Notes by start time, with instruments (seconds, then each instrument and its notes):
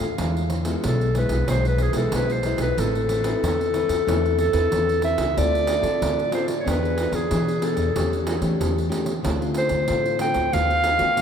Already playing: nylon-string guitar A2
0.00 upright bass D#2
0.18 upright bass E2, nylon-string guitar E3 G#3 B3 E4, pandeiro
0.37 pandeiro
0.50 pandeiro
0.65 nylon-string guitar G#3 B3 E4, pandeiro
0.84 upright bass B1, nylon-string guitar B2, clarinet A4, pandeiro
1.01 pandeiro
1.15 nylon-string guitar G#3 B3 E4, clarinet B4, pandeiro
1.29 upright bass B1, pandeiro
1.48 upright bass B1, nylon-string guitar E3 G#3 B3 E4, clarinet C5, pandeiro
1.65 clarinet B4, pandeiro
1.78 clarinet G#4, pandeiro
1.93 upright bass B1, nylon-string guitar G#3 B3 E4, clarinet A4, pandeiro
2.12 upright bass B1, nylon-string guitar B2, clarinet B4, pandeiro
2.30 clarinet C5, pandeiro
2.43 nylon-string guitar G#3 B3 E4, pandeiro
2.58 upright bass B1, clarinet B4, pandeiro
2.77 upright bass A1, nylon-string guitar A3 C4 E4 B4, clarinet A4, pandeiro
2.95 pandeiro
3.09 pandeiro
3.24 nylon-string guitar C4 E4 B4, pandeiro
3.43 upright bass E2, nylon-string guitar E3, pandeiro
3.61 pandeiro
3.74 nylon-string guitar C4 E4 B4, pandeiro
3.89 upright bass E2, pandeiro
4.07 upright bass E2, nylon-string guitar A3 C4 E4 B4, pandeiro
4.25 pandeiro
4.38 clarinet A4, pandeiro
4.53 upright bass E2, nylon-string guitar C4 E4 B4, pandeiro
4.72 upright bass E2, nylon-string guitar E3, pandeiro
4.89 pandeiro
5.02 nylon-string guitar C4 E4 B4, clarinet E5, pandeiro
5.18 upright bass C#2, pandeiro
5.37 upright bass D2, nylon-string guitar D3 C4 F4 A4, clarinet D5, pandeiro
5.55 pandeiro
5.67 pandeiro
5.82 upright bass D3, nylon-string guitar C4 F4 A4, pandeiro
6.01 upright bass D2, nylon-string guitar A2, pandeiro
6.19 pandeiro
6.31 nylon-string guitar C4 F4 A4, clarinet C5, pandeiro
6.48 pandeiro
6.60 clarinet C#5
6.65 upright bass E2, nylon-string guitar E3 B3 D4 G#4, pandeiro
6.69 clarinet B4
6.83 nylon-string guitar B3 D4 G#4, pandeiro
6.98 pandeiro
7.12 upright bass E2, clarinet G#4, pandeiro
7.31 nylon-string guitar B2 B3 D4 G#4, upright bass E3, pandeiro
7.48 pandeiro
7.62 nylon-string guitar B3 D4 G#4, clarinet A4, pandeiro
7.77 upright bass E2, pandeiro
7.95 upright bass E2, nylon-string guitar E3 A3 C#4 G4, pandeiro
8.13 pandeiro
8.27 pandeiro
8.41 upright bass E3, nylon-string guitar A3 C#4 G4, pandeiro
8.60 upright bass E2, nylon-string guitar E3, pandeiro
8.78 pandeiro
8.89 nylon-string guitar A3 C#4 G4, pandeiro
9.06 pandeiro
9.23 upright bass D2, nylon-string guitar D3 A3 C4 F4, pandeiro
9.41 nylon-string guitar A3 C4 F4, pandeiro
9.54 clarinet C5, pandeiro
9.69 upright bass D2, pandeiro
9.88 nylon-string guitar A2 A3 C4 F4, upright bass D3, pandeiro
10.06 pandeiro
10.19 nylon-string guitar A3 C4 F4, clarinet G5, pandeiro
10.34 upright bass D2, pandeiro
10.52 upright bass D#2, nylon-string guitar D#3 A3 B3 F#4, clarinet F5, pandeiro
10.70 pandeiro
10.84 pandeiro
10.98 upright bass D#3, nylon-string guitar A3 B3 F#4, pandeiro
11.16 nylon-string guitar D#3, pandeiro